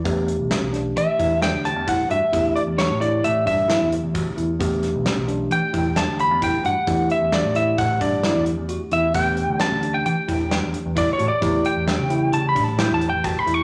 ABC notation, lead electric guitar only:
X:1
M:5/4
L:1/16
Q:1/4=132
K:Edor
V:1 name="Lead electric guitar"
z8 e4 g2 a2 f2 e2- | e2 d2 c2 d2 e2 e4 z6 | z8 g4 a2 b2 g2 f2- | f2 e2 d2 e2 f2 d4 z4 e2 |
g4 a3 g g6 z2 (3d2 c2 d2- | d2 g6 (3a2 b2 a2 (3g2 a2 g2 (3a2 b2 c'2 |]